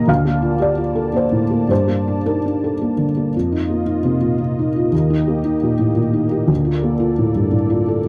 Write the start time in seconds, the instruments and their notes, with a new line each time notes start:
Already playing: felt piano D#2 A#2 A#3 D#4 F4 G4 G5 A#5, analog synth pad A#3
0.07 felt piano D2 F5, analog synth pad D5 A5
0.25 felt piano A#3
0.42 felt piano F4
0.59 felt piano G4 D5
0.78 felt piano F4
0.95 felt piano A4
1.13 felt piano A#3 C5
1.32 felt piano A2
1.51 felt piano A#3
1.69 felt piano G2 C5
1.87 felt piano A#3
2.08 felt piano D4
2.26 felt piano D#4 A#4
2.46 felt piano D4
2.64 felt piano A4
2.81 felt piano A#3
2.98 felt piano D3
3.17 felt piano A#3
3.34 felt piano F2, analog synth pad A#3 F4 D#5
3.52 felt piano D#4
3.70 felt piano A#3
3.86 felt piano D#4
4.04 felt piano C3
4.21 felt piano A#2
4.39 felt piano C3
4.59 felt piano D#4
4.76 felt piano F4
4.92 felt piano D#2, analog synth pad G4
5.10 felt piano D#4
5.28 felt piano A#3
5.44 felt piano D#4
5.63 felt piano A#2
5.79 felt piano A2
5.96 felt piano A#2
6.13 felt piano D#4
6.31 felt piano G4
6.48 felt piano D2, analog synth pad A4
6.52 analog synth pad D5
6.65 felt piano F4
6.83 felt piano A#3
7.00 felt piano F4
7.19 felt piano A2
7.35 felt piano G2
7.52 felt piano A2
7.70 felt piano F4
7.88 felt piano A4